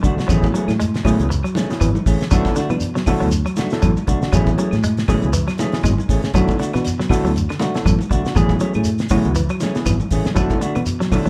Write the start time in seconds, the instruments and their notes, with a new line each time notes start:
0.03 fingered electric bass B1, clean electric guitar D3 A3 D4 F#4, kick, closed hi-hat, shekere
0.17 clean electric guitar D4 F#4, muted fingered electric bass stroke, snare, high conga, shekere
0.28 fingered electric bass A1, clean electric guitar E3 F#3 A3 C#4 G#4, tine electric piano F#3 B3 E4 G#4, kick, closed hi-hat, low conga, claves, shekere
0.43 kick, closed hi-hat, high conga, shekere
0.54 clean electric guitar E3 F#3 A3 C#4 G#4, closed hi-hat, shekere
0.68 fingered electric bass A2, snare, closed hi-hat, high conga, claves, shekere
0.80 clean electric guitar G#3, closed hi-hat, shekere
0.94 snare, closed hi-hat, shekere
1.05 fingered electric bass A2, clean electric guitar E3 F#3 A3 C#4 G#4, tine electric piano F#3 B3 E4 G#4, kick, open hi-hat, high conga, low conga, claves, shekere
1.19 fingered electric bass C#2, closed hi-hat, shekere
1.30 muted clean electric guitar stroke, closed hi-hat, shekere
1.43 clean electric guitar F#3, closed hi-hat, claves, shekere
1.55 clean electric guitar E3 A3 C#4 G#4, snare, closed hi-hat, high conga, shekere
1.70 tine electric piano F#3 B3 E4 G#4, snare, closed hi-hat, shekere
1.80 fingered electric bass G#1, clean electric guitar E3, kick, closed hi-hat, claves, shekere
1.95 high conga, shekere
2.06 fingered electric bass A1, clean electric guitar E3 A3 C#4 G#4, kick, open hi-hat, shekere
2.20 snare, closed hi-hat, shekere
2.31 fingered electric bass B1, clean electric guitar F#3 A3 D4 F#4, tine electric piano F#3 B3 E4 A4, kick, closed hi-hat, low conga, claves, shekere
2.45 kick, snare, closed hi-hat, high conga, shekere
2.56 clean electric guitar D3 A3 D4 F#4, snare, closed hi-hat, shekere
2.70 fingered electric bass B2, clean electric guitar E3 D4, muted clean electric guitar stroke, closed hi-hat, high conga, claves, shekere
2.80 closed hi-hat, shekere
2.95 clean electric guitar F#3, snare, shekere
3.06 fingered electric bass B2, tine electric piano F#3 B3 E4 A4, clean electric guitar A3 D4 F#4, kick, open hi-hat, high conga, low conga, claves, shekere
3.20 fingered electric bass D2, clean electric guitar F#3, low conga, shekere
3.31 closed hi-hat, shekere
3.46 clean electric guitar F#3, closed hi-hat, claves, shekere
3.56 clean electric guitar A3 D4 F#4, snare, closed hi-hat, high conga, shekere
3.70 tine electric piano F#3 B3 E4 A4, snare, closed hi-hat, shekere
3.82 fingered electric bass A1, clean electric guitar F#3, kick, closed hi-hat, high conga, claves, shekere
3.97 closed hi-hat, high conga, shekere
4.07 fingered electric bass B1, clean electric guitar D3 A3 D4 F#4, kick, closed hi-hat, shekere
4.22 clean electric guitar D4 F#4, muted fingered electric bass stroke, snare, shekere
4.32 fingered electric bass A1, clean electric guitar E3 F#3 A3 C#4 G#4, tine electric piano F#3 B3 E4 G#4, kick, closed hi-hat, low conga, claves, shekere
4.46 kick, closed hi-hat, high conga, shekere
4.57 clean electric guitar E3 F#3 A3 C#4 G#4, closed hi-hat, shekere
4.71 fingered electric bass A2, snare, closed hi-hat, claves, shekere
4.83 clean electric guitar G#3, closed hi-hat, shekere
4.97 snare, closed hi-hat, shekere
5.08 fingered electric bass A2, clean electric guitar E3 F#3 A3 C#4 G#4, tine electric piano F#3 B3 E4 G#4, kick, open hi-hat, high conga, low conga, claves, shekere
5.22 fingered electric bass C#2, closed hi-hat, shekere
5.33 clean electric guitar E3, closed hi-hat, shekere
5.48 clean electric guitar F#3, snare, closed hi-hat, claves, shekere
5.58 clean electric guitar E3 A3 C#4 G#4, snare, closed hi-hat, high conga, shekere
5.72 tine electric piano F#3 B3 E4 G#4, snare, closed hi-hat, shekere
5.83 fingered electric bass G#1, clean electric guitar G#3, kick, snare, closed hi-hat, high conga, claves, shekere
5.98 high conga, shekere
6.09 fingered electric bass A1, clean electric guitar E3 A3 C#4 G#4, kick, open hi-hat, shekere
6.23 clean electric guitar A3 C#4 G#4, muted fingered electric bass stroke, snare, closed hi-hat, shekere
6.34 fingered electric bass B1, tine electric piano F#3 B3 E4 A4, clean electric guitar F#3 A3 D4 F#4, kick, closed hi-hat, low conga, claves, shekere
6.48 kick, closed hi-hat, high conga, shekere
6.59 clean electric guitar D3 A3 D4 F#4, snare, closed hi-hat, shekere
6.73 fingered electric bass B2, clean electric guitar E3 D4 F#4, snare, closed hi-hat, claves, shekere
6.85 snare, closed hi-hat, shekere
7.00 clean electric guitar F#3, snare, shekere
7.09 fingered electric bass B2, tine electric piano F#3 B3 E4 A4, clean electric guitar A3 D4 F#4, kick, open hi-hat, high conga, low conga, claves, shekere
7.23 fingered electric bass D2, clean electric guitar F#3, shekere
7.36 closed hi-hat, shekere
7.49 clean electric guitar D3, snare, closed hi-hat, claves, shekere
7.59 clean electric guitar A3 D4 F#4, snare, closed hi-hat, high conga, shekere
7.74 tine electric piano F#3 B3 E4 A4, snare, closed hi-hat, shekere
7.85 fingered electric bass A1, clean electric guitar F#3, kick, closed hi-hat, high conga, claves, shekere
7.99 closed hi-hat, high conga, shekere
8.11 fingered electric bass B1, clean electric guitar D3 A3 D4 F#4, kick, closed hi-hat, shekere
8.25 clean electric guitar D4 F#4, muted fingered electric bass stroke, snare, shekere
8.35 fingered electric bass A1, clean electric guitar E3 F#3 A3 G#4, tine electric piano F#3 B3 E4 G#4, muted clean electric guitar stroke, kick, closed hi-hat, low conga, claves, shekere
8.49 kick, closed hi-hat, high conga, shekere
8.60 clean electric guitar E3 F#3 A3 C#4 G#4, closed hi-hat, shekere
8.74 fingered electric bass A2, clean electric guitar A3 C#4 G#4, closed hi-hat, claves, shekere
8.84 closed hi-hat, shekere
8.98 snare, closed hi-hat, shekere
9.09 fingered electric bass A2, clean electric guitar E3 F#3 A3 C#4 G#4, tine electric piano F#3 B3 E4 F#4, kick, open hi-hat, high conga, low conga, claves, shekere
9.24 fingered electric bass C#2, closed hi-hat, low conga, shekere
9.35 clean electric guitar E3, closed hi-hat, shekere
9.49 clean electric guitar F#3, closed hi-hat, claves, shekere
9.60 clean electric guitar E3 A3 C#4 G#4, snare, closed hi-hat, high conga, shekere
9.75 tine electric piano F#3 B3 E4 G#4, snare, closed hi-hat, shekere
9.86 fingered electric bass G#1, clean electric guitar E3, kick, snare, closed hi-hat, high conga, claves, shekere
10.00 high conga, shekere
10.11 fingered electric bass A1, clean electric guitar E3 A3 C#4 G#4, kick, open hi-hat, shekere
10.25 muted fingered electric bass stroke, snare, closed hi-hat, high conga, shekere
10.34 fingered electric bass B1, tine electric piano F#3 B3 E4 A4, clean electric guitar F#3 A3 D4 F#4, kick, closed hi-hat, low conga, claves, shekere
10.50 kick, closed hi-hat, high conga, shekere
10.61 clean electric guitar D3 A3 D4 F#4, closed hi-hat, shekere
10.75 fingered electric bass B2, clean electric guitar E3, closed hi-hat, claves, shekere
10.86 closed hi-hat, shekere
11.00 clean electric guitar F#3, snare, shekere
11.11 fingered electric bass B2, tine electric piano F#3 B3 E4 A4, clean electric guitar A3 D4, muted clean electric guitar stroke, kick, snare, open hi-hat, high conga, low conga, claves, shekere
11.26 fingered electric bass D2, clean electric guitar F#3, shekere